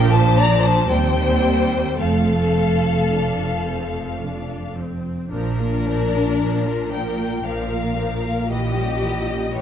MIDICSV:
0, 0, Header, 1, 6, 480
1, 0, Start_track
1, 0, Key_signature, -2, "major"
1, 0, Tempo, 1032702
1, 422, Tempo, 1079137
1, 903, Time_signature, 3, 2, 24, 8
1, 1382, Tempo, 1107011
1, 2822, Tempo, 1045296
1, 4304, End_track
2, 0, Start_track
2, 0, Title_t, "Violin section"
2, 0, Program_c, 0, 48
2, 0, Note_on_c, 0, 79, 107
2, 62, Note_off_c, 0, 79, 0
2, 62, Note_on_c, 0, 81, 109
2, 181, Note_off_c, 0, 81, 0
2, 184, Note_on_c, 0, 82, 107
2, 303, Note_off_c, 0, 82, 0
2, 303, Note_on_c, 0, 81, 103
2, 420, Note_on_c, 0, 79, 102
2, 423, Note_off_c, 0, 81, 0
2, 901, Note_on_c, 0, 77, 83
2, 902, Note_off_c, 0, 79, 0
2, 2093, Note_off_c, 0, 77, 0
2, 2357, Note_on_c, 0, 70, 82
2, 3047, Note_off_c, 0, 70, 0
2, 3063, Note_on_c, 0, 79, 73
2, 3302, Note_off_c, 0, 79, 0
2, 3303, Note_on_c, 0, 77, 70
2, 3793, Note_off_c, 0, 77, 0
2, 3794, Note_on_c, 0, 75, 75
2, 4256, Note_off_c, 0, 75, 0
2, 4260, Note_on_c, 0, 73, 76
2, 4304, Note_off_c, 0, 73, 0
2, 4304, End_track
3, 0, Start_track
3, 0, Title_t, "Violin section"
3, 0, Program_c, 1, 48
3, 0, Note_on_c, 1, 70, 83
3, 58, Note_on_c, 1, 72, 88
3, 60, Note_off_c, 1, 70, 0
3, 178, Note_off_c, 1, 72, 0
3, 179, Note_on_c, 1, 74, 94
3, 300, Note_off_c, 1, 74, 0
3, 301, Note_on_c, 1, 72, 83
3, 419, Note_off_c, 1, 72, 0
3, 424, Note_on_c, 1, 72, 86
3, 895, Note_off_c, 1, 72, 0
3, 904, Note_on_c, 1, 69, 78
3, 2111, Note_off_c, 1, 69, 0
3, 2349, Note_on_c, 1, 62, 72
3, 3043, Note_off_c, 1, 62, 0
3, 3059, Note_on_c, 1, 70, 60
3, 3300, Note_off_c, 1, 70, 0
3, 3307, Note_on_c, 1, 70, 53
3, 3785, Note_off_c, 1, 70, 0
3, 3802, Note_on_c, 1, 67, 71
3, 4269, Note_off_c, 1, 67, 0
3, 4275, Note_on_c, 1, 67, 69
3, 4304, Note_off_c, 1, 67, 0
3, 4304, End_track
4, 0, Start_track
4, 0, Title_t, "Viola section"
4, 0, Program_c, 2, 48
4, 0, Note_on_c, 2, 53, 82
4, 0, Note_on_c, 2, 62, 85
4, 404, Note_off_c, 2, 53, 0
4, 404, Note_off_c, 2, 62, 0
4, 424, Note_on_c, 2, 55, 75
4, 425, Note_on_c, 2, 60, 77
4, 901, Note_off_c, 2, 60, 0
4, 904, Note_off_c, 2, 55, 0
4, 907, Note_on_c, 2, 60, 64
4, 908, Note_on_c, 2, 57, 65
4, 1327, Note_off_c, 2, 60, 0
4, 1328, Note_off_c, 2, 57, 0
4, 1381, Note_on_c, 2, 62, 58
4, 1605, Note_off_c, 2, 62, 0
4, 1622, Note_on_c, 2, 60, 46
4, 1865, Note_on_c, 2, 62, 61
4, 1866, Note_off_c, 2, 60, 0
4, 2111, Note_off_c, 2, 62, 0
4, 2115, Note_on_c, 2, 60, 52
4, 2352, Note_on_c, 2, 53, 52
4, 2353, Note_on_c, 2, 62, 50
4, 2354, Note_off_c, 2, 60, 0
4, 2462, Note_off_c, 2, 53, 0
4, 2463, Note_off_c, 2, 62, 0
4, 2470, Note_on_c, 2, 58, 46
4, 2470, Note_on_c, 2, 65, 44
4, 2586, Note_on_c, 2, 62, 46
4, 2588, Note_off_c, 2, 58, 0
4, 2588, Note_off_c, 2, 65, 0
4, 2588, Note_on_c, 2, 53, 43
4, 2705, Note_off_c, 2, 62, 0
4, 2705, Note_on_c, 2, 58, 42
4, 2706, Note_off_c, 2, 53, 0
4, 2708, Note_on_c, 2, 65, 45
4, 2821, Note_off_c, 2, 58, 0
4, 2823, Note_off_c, 2, 65, 0
4, 2823, Note_on_c, 2, 53, 45
4, 2823, Note_on_c, 2, 62, 45
4, 2935, Note_off_c, 2, 53, 0
4, 2935, Note_off_c, 2, 62, 0
4, 2939, Note_on_c, 2, 65, 44
4, 2940, Note_on_c, 2, 58, 44
4, 3058, Note_on_c, 2, 53, 40
4, 3060, Note_off_c, 2, 65, 0
4, 3060, Note_on_c, 2, 62, 39
4, 3061, Note_off_c, 2, 58, 0
4, 3179, Note_off_c, 2, 53, 0
4, 3180, Note_off_c, 2, 62, 0
4, 3183, Note_on_c, 2, 58, 45
4, 3183, Note_on_c, 2, 65, 45
4, 3302, Note_off_c, 2, 58, 0
4, 3302, Note_off_c, 2, 65, 0
4, 3302, Note_on_c, 2, 53, 51
4, 3303, Note_on_c, 2, 62, 46
4, 3415, Note_off_c, 2, 53, 0
4, 3415, Note_off_c, 2, 62, 0
4, 3423, Note_on_c, 2, 65, 40
4, 3426, Note_on_c, 2, 58, 41
4, 3544, Note_on_c, 2, 62, 44
4, 3547, Note_off_c, 2, 65, 0
4, 3548, Note_off_c, 2, 58, 0
4, 3549, Note_on_c, 2, 53, 43
4, 3665, Note_on_c, 2, 65, 43
4, 3668, Note_on_c, 2, 58, 45
4, 3669, Note_off_c, 2, 62, 0
4, 3671, Note_off_c, 2, 53, 0
4, 3788, Note_on_c, 2, 64, 49
4, 3790, Note_off_c, 2, 65, 0
4, 3791, Note_off_c, 2, 58, 0
4, 3792, Note_on_c, 2, 52, 48
4, 3902, Note_off_c, 2, 64, 0
4, 3904, Note_off_c, 2, 52, 0
4, 3907, Note_on_c, 2, 55, 44
4, 3909, Note_on_c, 2, 61, 44
4, 4028, Note_off_c, 2, 55, 0
4, 4028, Note_on_c, 2, 64, 39
4, 4029, Note_off_c, 2, 61, 0
4, 4029, Note_on_c, 2, 52, 41
4, 4139, Note_on_c, 2, 61, 40
4, 4141, Note_on_c, 2, 55, 45
4, 4146, Note_off_c, 2, 64, 0
4, 4147, Note_off_c, 2, 52, 0
4, 4257, Note_on_c, 2, 64, 38
4, 4258, Note_on_c, 2, 52, 43
4, 4260, Note_off_c, 2, 61, 0
4, 4261, Note_off_c, 2, 55, 0
4, 4304, Note_off_c, 2, 52, 0
4, 4304, Note_off_c, 2, 64, 0
4, 4304, End_track
5, 0, Start_track
5, 0, Title_t, "Cello section"
5, 0, Program_c, 3, 48
5, 0, Note_on_c, 3, 46, 80
5, 404, Note_off_c, 3, 46, 0
5, 425, Note_on_c, 3, 39, 76
5, 904, Note_on_c, 3, 41, 63
5, 905, Note_off_c, 3, 39, 0
5, 2262, Note_off_c, 3, 41, 0
5, 2351, Note_on_c, 3, 46, 57
5, 2766, Note_off_c, 3, 46, 0
5, 2825, Note_on_c, 3, 46, 62
5, 3247, Note_off_c, 3, 46, 0
5, 3301, Note_on_c, 3, 46, 60
5, 3734, Note_off_c, 3, 46, 0
5, 3794, Note_on_c, 3, 46, 60
5, 4210, Note_off_c, 3, 46, 0
5, 4268, Note_on_c, 3, 46, 60
5, 4304, Note_off_c, 3, 46, 0
5, 4304, End_track
6, 0, Start_track
6, 0, Title_t, "Double bass section"
6, 0, Program_c, 4, 48
6, 0, Note_on_c, 4, 34, 86
6, 403, Note_off_c, 4, 34, 0
6, 424, Note_on_c, 4, 39, 76
6, 904, Note_off_c, 4, 39, 0
6, 904, Note_on_c, 4, 29, 66
6, 2262, Note_off_c, 4, 29, 0
6, 2350, Note_on_c, 4, 34, 65
6, 2766, Note_off_c, 4, 34, 0
6, 2823, Note_on_c, 4, 34, 55
6, 3245, Note_off_c, 4, 34, 0
6, 3304, Note_on_c, 4, 34, 59
6, 3736, Note_off_c, 4, 34, 0
6, 3791, Note_on_c, 4, 34, 61
6, 4209, Note_off_c, 4, 34, 0
6, 4263, Note_on_c, 4, 34, 54
6, 4304, Note_off_c, 4, 34, 0
6, 4304, End_track
0, 0, End_of_file